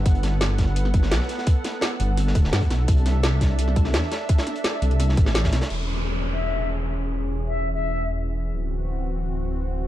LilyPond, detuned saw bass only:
\new Staff \with { instrumentName = "Detuned saw bass" } { \clef bass \time 4/4 \key e \major \tempo 4 = 170 g,,4. g,,4. b,,8 r8 | r4. g,,4 d,,8 g,8 b,,8 | c,4. c,4. e,8 r8 | r4. c,4 a,,4 c,8 |
e,,1~ | e,,1 | d,,1 | }